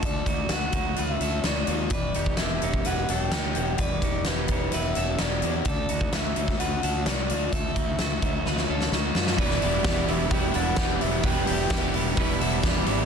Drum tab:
HH |x-x-x-x-x-x-x-x-|x-x-x-x-x-x-x-x-|x-x-x-x-x-x-x-x-|x-x-x-x-x-x-x-x-|
SD |----o-------o---|----o-------o---|----o-------o---|----o--o----o---|
BD |o-o---o---------|o--o---o--------|o-o---o---------|o--o---o--------|

HH |x-x-x-x---------|o-o-o-o-o-o-o-o-|o-o-o-o-o-o-o-o-|
SD |----o---oo-oo-oo|-o--o-------o---|----o-------o---|
BD |o-o---o---------|o---o---o---o---|o---o---o---o---|